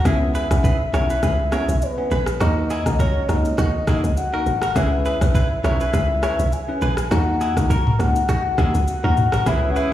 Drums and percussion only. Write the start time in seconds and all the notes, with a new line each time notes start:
0.05 kick, cross-stick, shaker
0.35 shaker
0.51 kick, cross-stick, shaker
0.64 kick, shaker
0.94 cross-stick, shaker
1.10 shaker
1.23 kick, cross-stick, shaker
1.52 cross-stick, shaker
1.69 shaker
1.82 shaker
2.11 shaker
2.26 cross-stick, shaker
2.40 cross-stick, shaker
2.70 shaker
2.86 kick, cross-stick, shaker
2.99 kick, shaker
3.29 cross-stick, shaker
3.45 shaker
3.58 kick, cross-stick, shaker
3.87 kick, cross-stick, shaker
4.04 shaker
4.17 shaker
4.46 shaker
4.62 cross-stick, shaker
4.76 kick, cross-stick, shaker
5.05 shaker
5.21 kick, cross-stick, shaker
5.35 kick, shaker
5.64 cross-stick, shaker
5.80 shaker
5.93 kick, cross-stick, shaker
6.23 cross-stick, shaker
6.39 shaker
6.52 shaker
6.82 shaker
6.97 cross-stick, shaker
7.11 cross-stick, shaker
7.41 shaker
7.57 kick, cross-stick, shaker
7.70 kick, shaker
7.87 mid tom
8.00 cross-stick, shaker
8.16 shaker
8.29 kick, cross-stick, shaker
8.58 kick, cross-stick, shaker
8.75 shaker
8.88 shaker
9.17 mid tom, shaker
9.32 cross-stick, shaker
9.46 kick, cross-stick, shaker
9.76 shaker